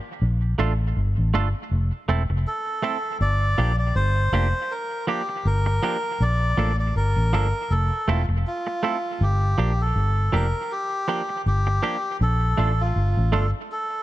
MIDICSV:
0, 0, Header, 1, 5, 480
1, 0, Start_track
1, 0, Tempo, 749064
1, 133, Time_signature, 4, 2, 24, 8
1, 8989, End_track
2, 0, Start_track
2, 0, Title_t, "Melodica"
2, 0, Program_c, 0, 22
2, 1584, Note_on_c, 0, 69, 95
2, 2034, Note_off_c, 0, 69, 0
2, 2059, Note_on_c, 0, 74, 115
2, 2408, Note_off_c, 0, 74, 0
2, 2430, Note_on_c, 0, 74, 90
2, 2528, Note_off_c, 0, 74, 0
2, 2535, Note_on_c, 0, 72, 105
2, 3019, Note_on_c, 0, 70, 98
2, 3030, Note_off_c, 0, 72, 0
2, 3241, Note_off_c, 0, 70, 0
2, 3256, Note_on_c, 0, 67, 90
2, 3502, Note_on_c, 0, 70, 106
2, 3504, Note_off_c, 0, 67, 0
2, 3986, Note_on_c, 0, 74, 114
2, 3994, Note_off_c, 0, 70, 0
2, 4332, Note_off_c, 0, 74, 0
2, 4355, Note_on_c, 0, 74, 90
2, 4451, Note_off_c, 0, 74, 0
2, 4464, Note_on_c, 0, 70, 98
2, 4942, Note_on_c, 0, 69, 98
2, 4955, Note_off_c, 0, 70, 0
2, 5185, Note_on_c, 0, 65, 82
2, 5187, Note_off_c, 0, 69, 0
2, 5291, Note_off_c, 0, 65, 0
2, 5429, Note_on_c, 0, 65, 94
2, 5912, Note_on_c, 0, 67, 100
2, 5917, Note_off_c, 0, 65, 0
2, 6288, Note_on_c, 0, 69, 87
2, 6292, Note_off_c, 0, 67, 0
2, 6630, Note_on_c, 0, 70, 90
2, 6635, Note_off_c, 0, 69, 0
2, 6867, Note_on_c, 0, 67, 89
2, 6871, Note_off_c, 0, 70, 0
2, 7317, Note_off_c, 0, 67, 0
2, 7352, Note_on_c, 0, 67, 89
2, 7799, Note_off_c, 0, 67, 0
2, 7834, Note_on_c, 0, 69, 97
2, 8206, Note_on_c, 0, 65, 81
2, 8212, Note_off_c, 0, 69, 0
2, 8550, Note_on_c, 0, 69, 79
2, 8554, Note_off_c, 0, 65, 0
2, 8655, Note_off_c, 0, 69, 0
2, 8790, Note_on_c, 0, 69, 92
2, 8989, Note_off_c, 0, 69, 0
2, 8989, End_track
3, 0, Start_track
3, 0, Title_t, "Clean electric guitar"
3, 0, Program_c, 1, 27
3, 375, Note_on_c, 1, 57, 78
3, 378, Note_on_c, 1, 62, 78
3, 381, Note_on_c, 1, 65, 82
3, 384, Note_on_c, 1, 69, 85
3, 459, Note_off_c, 1, 57, 0
3, 461, Note_off_c, 1, 62, 0
3, 463, Note_off_c, 1, 65, 0
3, 464, Note_off_c, 1, 69, 0
3, 857, Note_on_c, 1, 57, 74
3, 861, Note_on_c, 1, 62, 83
3, 864, Note_on_c, 1, 65, 88
3, 865, Note_on_c, 1, 69, 96
3, 941, Note_off_c, 1, 57, 0
3, 943, Note_off_c, 1, 62, 0
3, 944, Note_off_c, 1, 65, 0
3, 945, Note_off_c, 1, 69, 0
3, 1336, Note_on_c, 1, 57, 76
3, 1339, Note_on_c, 1, 60, 86
3, 1341, Note_on_c, 1, 64, 79
3, 1344, Note_on_c, 1, 69, 90
3, 1421, Note_off_c, 1, 57, 0
3, 1422, Note_off_c, 1, 60, 0
3, 1423, Note_off_c, 1, 64, 0
3, 1425, Note_off_c, 1, 69, 0
3, 1810, Note_on_c, 1, 57, 72
3, 1815, Note_on_c, 1, 60, 85
3, 1817, Note_on_c, 1, 64, 83
3, 1820, Note_on_c, 1, 69, 89
3, 1898, Note_off_c, 1, 57, 0
3, 1900, Note_off_c, 1, 60, 0
3, 1901, Note_off_c, 1, 64, 0
3, 1903, Note_off_c, 1, 69, 0
3, 2294, Note_on_c, 1, 53, 76
3, 2296, Note_on_c, 1, 58, 78
3, 2299, Note_on_c, 1, 62, 76
3, 2301, Note_on_c, 1, 67, 79
3, 2380, Note_off_c, 1, 53, 0
3, 2381, Note_off_c, 1, 58, 0
3, 2382, Note_off_c, 1, 62, 0
3, 2384, Note_off_c, 1, 67, 0
3, 2775, Note_on_c, 1, 53, 74
3, 2778, Note_on_c, 1, 58, 80
3, 2780, Note_on_c, 1, 62, 87
3, 2784, Note_on_c, 1, 67, 89
3, 2860, Note_off_c, 1, 53, 0
3, 2862, Note_off_c, 1, 58, 0
3, 2863, Note_off_c, 1, 62, 0
3, 2865, Note_off_c, 1, 67, 0
3, 3251, Note_on_c, 1, 53, 70
3, 3255, Note_on_c, 1, 58, 82
3, 3258, Note_on_c, 1, 62, 73
3, 3260, Note_on_c, 1, 67, 81
3, 3339, Note_off_c, 1, 53, 0
3, 3341, Note_off_c, 1, 58, 0
3, 3342, Note_off_c, 1, 62, 0
3, 3343, Note_off_c, 1, 67, 0
3, 3734, Note_on_c, 1, 53, 85
3, 3737, Note_on_c, 1, 58, 86
3, 3739, Note_on_c, 1, 62, 96
3, 3743, Note_on_c, 1, 67, 92
3, 3820, Note_off_c, 1, 53, 0
3, 3822, Note_off_c, 1, 58, 0
3, 3823, Note_off_c, 1, 62, 0
3, 3825, Note_off_c, 1, 67, 0
3, 4213, Note_on_c, 1, 53, 77
3, 4218, Note_on_c, 1, 58, 74
3, 4220, Note_on_c, 1, 62, 83
3, 4223, Note_on_c, 1, 69, 76
3, 4300, Note_off_c, 1, 53, 0
3, 4302, Note_off_c, 1, 58, 0
3, 4304, Note_off_c, 1, 62, 0
3, 4305, Note_off_c, 1, 69, 0
3, 4698, Note_on_c, 1, 53, 80
3, 4700, Note_on_c, 1, 58, 80
3, 4703, Note_on_c, 1, 62, 83
3, 4706, Note_on_c, 1, 69, 87
3, 4782, Note_off_c, 1, 53, 0
3, 4784, Note_off_c, 1, 58, 0
3, 4785, Note_off_c, 1, 62, 0
3, 4787, Note_off_c, 1, 69, 0
3, 5176, Note_on_c, 1, 57, 70
3, 5181, Note_on_c, 1, 60, 76
3, 5183, Note_on_c, 1, 64, 85
3, 5186, Note_on_c, 1, 69, 84
3, 5262, Note_off_c, 1, 57, 0
3, 5264, Note_off_c, 1, 60, 0
3, 5265, Note_off_c, 1, 64, 0
3, 5267, Note_off_c, 1, 69, 0
3, 5658, Note_on_c, 1, 57, 75
3, 5661, Note_on_c, 1, 60, 77
3, 5665, Note_on_c, 1, 64, 78
3, 5667, Note_on_c, 1, 69, 89
3, 5743, Note_off_c, 1, 57, 0
3, 5744, Note_off_c, 1, 60, 0
3, 5746, Note_off_c, 1, 64, 0
3, 5747, Note_off_c, 1, 69, 0
3, 6138, Note_on_c, 1, 53, 70
3, 6141, Note_on_c, 1, 58, 73
3, 6143, Note_on_c, 1, 62, 76
3, 6145, Note_on_c, 1, 67, 76
3, 6223, Note_off_c, 1, 53, 0
3, 6225, Note_off_c, 1, 58, 0
3, 6226, Note_off_c, 1, 62, 0
3, 6226, Note_off_c, 1, 67, 0
3, 6616, Note_on_c, 1, 53, 76
3, 6620, Note_on_c, 1, 58, 85
3, 6622, Note_on_c, 1, 62, 86
3, 6624, Note_on_c, 1, 67, 88
3, 6702, Note_off_c, 1, 53, 0
3, 6704, Note_off_c, 1, 58, 0
3, 6705, Note_off_c, 1, 62, 0
3, 6706, Note_off_c, 1, 67, 0
3, 7099, Note_on_c, 1, 53, 74
3, 7103, Note_on_c, 1, 58, 78
3, 7104, Note_on_c, 1, 62, 81
3, 7106, Note_on_c, 1, 67, 82
3, 7184, Note_off_c, 1, 53, 0
3, 7185, Note_off_c, 1, 58, 0
3, 7186, Note_off_c, 1, 62, 0
3, 7187, Note_off_c, 1, 67, 0
3, 7578, Note_on_c, 1, 53, 82
3, 7580, Note_on_c, 1, 58, 77
3, 7583, Note_on_c, 1, 62, 85
3, 7585, Note_on_c, 1, 67, 91
3, 7663, Note_off_c, 1, 53, 0
3, 7664, Note_off_c, 1, 58, 0
3, 7665, Note_off_c, 1, 62, 0
3, 7666, Note_off_c, 1, 67, 0
3, 8058, Note_on_c, 1, 57, 73
3, 8062, Note_on_c, 1, 62, 75
3, 8066, Note_on_c, 1, 65, 73
3, 8069, Note_on_c, 1, 69, 77
3, 8143, Note_off_c, 1, 57, 0
3, 8145, Note_off_c, 1, 62, 0
3, 8147, Note_off_c, 1, 65, 0
3, 8148, Note_off_c, 1, 69, 0
3, 8537, Note_on_c, 1, 57, 78
3, 8540, Note_on_c, 1, 62, 92
3, 8543, Note_on_c, 1, 65, 85
3, 8545, Note_on_c, 1, 69, 84
3, 8622, Note_off_c, 1, 57, 0
3, 8624, Note_off_c, 1, 62, 0
3, 8625, Note_off_c, 1, 65, 0
3, 8626, Note_off_c, 1, 69, 0
3, 8989, End_track
4, 0, Start_track
4, 0, Title_t, "Fingered electric bass"
4, 0, Program_c, 2, 33
4, 139, Note_on_c, 2, 34, 93
4, 349, Note_off_c, 2, 34, 0
4, 377, Note_on_c, 2, 33, 84
4, 588, Note_off_c, 2, 33, 0
4, 618, Note_on_c, 2, 31, 93
4, 737, Note_off_c, 2, 31, 0
4, 754, Note_on_c, 2, 33, 85
4, 845, Note_off_c, 2, 33, 0
4, 860, Note_on_c, 2, 31, 80
4, 978, Note_off_c, 2, 31, 0
4, 1098, Note_on_c, 2, 29, 97
4, 1217, Note_off_c, 2, 29, 0
4, 1335, Note_on_c, 2, 28, 82
4, 1455, Note_off_c, 2, 28, 0
4, 1472, Note_on_c, 2, 29, 82
4, 1564, Note_off_c, 2, 29, 0
4, 2054, Note_on_c, 2, 31, 98
4, 2267, Note_off_c, 2, 31, 0
4, 2293, Note_on_c, 2, 34, 90
4, 2507, Note_off_c, 2, 34, 0
4, 2534, Note_on_c, 2, 31, 97
4, 2747, Note_off_c, 2, 31, 0
4, 2770, Note_on_c, 2, 29, 91
4, 2893, Note_off_c, 2, 29, 0
4, 3494, Note_on_c, 2, 31, 86
4, 3708, Note_off_c, 2, 31, 0
4, 3976, Note_on_c, 2, 34, 94
4, 4188, Note_off_c, 2, 34, 0
4, 4215, Note_on_c, 2, 33, 83
4, 4428, Note_off_c, 2, 33, 0
4, 4457, Note_on_c, 2, 31, 84
4, 4578, Note_off_c, 2, 31, 0
4, 4591, Note_on_c, 2, 33, 82
4, 4684, Note_off_c, 2, 33, 0
4, 4694, Note_on_c, 2, 31, 86
4, 4816, Note_off_c, 2, 31, 0
4, 4938, Note_on_c, 2, 29, 93
4, 5058, Note_off_c, 2, 29, 0
4, 5176, Note_on_c, 2, 28, 88
4, 5297, Note_off_c, 2, 28, 0
4, 5309, Note_on_c, 2, 29, 82
4, 5403, Note_off_c, 2, 29, 0
4, 5901, Note_on_c, 2, 31, 98
4, 6111, Note_off_c, 2, 31, 0
4, 6140, Note_on_c, 2, 34, 94
4, 6351, Note_off_c, 2, 34, 0
4, 6380, Note_on_c, 2, 31, 91
4, 6591, Note_off_c, 2, 31, 0
4, 6622, Note_on_c, 2, 29, 85
4, 6740, Note_off_c, 2, 29, 0
4, 7344, Note_on_c, 2, 31, 80
4, 7553, Note_off_c, 2, 31, 0
4, 7823, Note_on_c, 2, 34, 99
4, 8033, Note_off_c, 2, 34, 0
4, 8063, Note_on_c, 2, 33, 84
4, 8273, Note_off_c, 2, 33, 0
4, 8304, Note_on_c, 2, 31, 88
4, 8421, Note_off_c, 2, 31, 0
4, 8440, Note_on_c, 2, 33, 92
4, 8529, Note_off_c, 2, 33, 0
4, 8545, Note_on_c, 2, 31, 91
4, 8662, Note_off_c, 2, 31, 0
4, 8989, End_track
5, 0, Start_track
5, 0, Title_t, "Muted clean electric guitar strokes"
5, 1473, Note_on_c, 9, 29, 45
5, 1537, Note_off_c, 9, 29, 0
5, 3389, Note_on_c, 9, 29, 48
5, 3453, Note_off_c, 9, 29, 0
5, 3628, Note_on_c, 9, 29, 51
5, 3692, Note_off_c, 9, 29, 0
5, 5312, Note_on_c, 9, 29, 40
5, 5376, Note_off_c, 9, 29, 0
5, 5554, Note_on_c, 9, 29, 36
5, 5618, Note_off_c, 9, 29, 0
5, 7237, Note_on_c, 9, 29, 54
5, 7301, Note_off_c, 9, 29, 0
5, 7477, Note_on_c, 9, 29, 47
5, 7541, Note_off_c, 9, 29, 0
5, 8989, End_track
0, 0, End_of_file